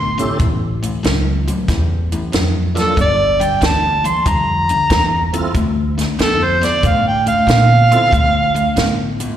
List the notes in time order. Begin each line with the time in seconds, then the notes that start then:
Already playing: A2 D3 B3 C6
0.18 D3 B3 C#4 E4 G4 A4, closed hi-hat
0.39 A1 A2 E3, kick, closed hi-hat
0.83 A2 E3, closed hi-hat
1.03 C#2 A2 F#3, snare, closed hi-hat
1.48 A2 F#3, closed hi-hat
1.68 E2 A2 E3, kick, snare, closed hi-hat
2.12 A2 E3, closed hi-hat
2.32 F2 A2 F#3, snare, closed hi-hat
2.75 A2 F#3 A#3 D4 F4 A4, snare, closed hi-hat
2.96 G1 G2 D3, kick, closed hi-hat
3.01 D5
3.40 G2 D3 G5, closed hi-hat
3.61 D2 G2 E3, snare, closed hi-hat
3.65 A5
4.04 G2 E3 C6, closed hi-hat
4.26 F2 G2 D3 A#5, kick, closed hi-hat
4.69 G2 D3, closed hi-hat
4.90 E2 G2 E3, kick, snare, closed hi-hat
5.33 G2 E3 C4 E4 F4 A4, closed hi-hat
5.54 D2 D3 A3, kick, closed hi-hat
5.98 D3 A3, snare, closed hi-hat
6.19 F2 D3 B3 A4, snare, closed hi-hat
6.44 C5
6.61 D3 B3 D5, snare, closed hi-hat
6.83 A2 D3 A3 F5, kick, closed hi-hat
7.07 G5
7.26 D3 A3 F5, closed hi-hat
7.47 A#2 D3 B3, snare, closed hi-hat
7.91 D3 B3 C4 E4 F4 A4, closed hi-hat
8.11 D2 D3 A3, kick, closed hi-hat
8.54 D3 A3, closed hi-hat
8.76 A2 D3 B3, snare, closed hi-hat
9.20 D3 B3, closed hi-hat